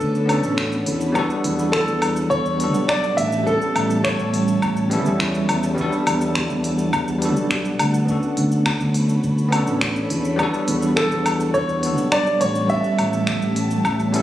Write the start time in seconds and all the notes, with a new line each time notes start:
Already playing: B3 C#4 D4 F#4 A4 C#5 B5
0.00 D2, kick, shaker
0.15 shaker
0.26 B3 C#4 D4, open hi-hat, low woodblock
0.31 F#4 A4
0.44 A1, shaker
0.58 finger snap, kick, shaker
0.72 shaker
0.86 E2, open hi-hat
1.01 shaker
1.12 G3 B3 D4, kick, low woodblock, shaker
1.16 F#4 A4 F#5 A5
1.30 shaker
1.44 E2, open hi-hat
1.59 shaker
1.72 A4, finger snap, kick, shaker
1.88 E2, shaker
2.02 open hi-hat, low woodblock
2.16 shaker
2.30 E2 C#5, kick, shaker
2.46 shaker
2.57 G3 B3 D4, open hi-hat
2.62 F#4 A4
2.74 B1, shaker
2.88 D5, finger snap, kick, low woodblock, shaker
3.04 shaker
3.17 A1 E5, open hi-hat
3.32 shaker
3.43 G3 B3 C#4 A4 C#5 E5, kick, shaker
3.48 E4 A4
3.62 shaker
3.76 A1, open hi-hat, low woodblock
3.90 shaker
4.04 C#5, finger snap, kick, shaker
4.19 A1, shaker
4.34 open hi-hat
4.48 shaker
4.62 A1, kick, low woodblock, shaker
4.77 shaker
4.90 G3 B3 C#4 E4 A4, open hi-hat
5.02 E2 G3 B3 C#4, shaker
5.07 E4 A4
5.20 finger snap, kick, shaker
5.35 shaker
5.49 E2, open hi-hat, low woodblock
5.63 shaker
5.74 G3 B3 D4 F#5, kick, shaker
5.80 F#4 A4
5.92 shaker
6.07 E2, open hi-hat, low woodblock
6.21 shaker
6.35 finger snap, kick, shaker
6.50 E2, shaker
6.64 open hi-hat
6.79 shaker
6.93 E2, kick, low woodblock, shaker
7.08 shaker
7.19 G3 B3 D4, open hi-hat
7.24 F#4 A4
7.36 B1, shaker
7.51 finger snap, kick, shaker
7.65 shaker
7.79 D2, open hi-hat, low woodblock
7.94 shaker
8.05 B3 C#4 D4 A4 C#5 B5, kick, shaker
8.11 F#4 A4
8.23 shaker
8.37 D2, open hi-hat
8.52 shaker
8.66 finger snap, kick, low woodblock, shaker
8.80 D2, shaker
8.94 open hi-hat
9.09 shaker
9.24 D2, kick, shaker
9.38 shaker
9.49 B3 C#4 D4, open hi-hat, low woodblock
9.54 F#4 A4
9.67 A1, shaker
9.81 finger snap, kick, shaker
9.96 shaker
10.10 E2, open hi-hat
10.25 shaker
10.36 G3 B3 D4 F#5 A5, kick, low woodblock, shaker
10.41 F#4 A4
10.54 shaker
10.68 E2, open hi-hat
10.82 shaker
10.96 A4, finger snap, kick, shaker
11.11 E2, shaker
11.26 open hi-hat, low woodblock
11.40 shaker
11.54 E2 C#5, kick, shaker
11.69 shaker
11.80 G3 B3 D4, open hi-hat
11.85 F#4 A4
11.98 B1, shaker
12.12 D5, finger snap, kick, low woodblock, shaker
12.27 shaker
12.41 A1 C#5, open hi-hat
12.55 shaker
12.66 G3 B3 C#4 C#5 E5, kick, shaker
12.71 E4 A4
12.84 shaker
12.99 A1, open hi-hat, low woodblock
13.13 shaker
13.27 finger snap, kick, shaker
13.42 A1, shaker
13.56 open hi-hat
13.71 shaker
13.85 A1, kick, low woodblock, shaker
13.99 shaker
14.12 G3 B3 C#4 E4 A4, open hi-hat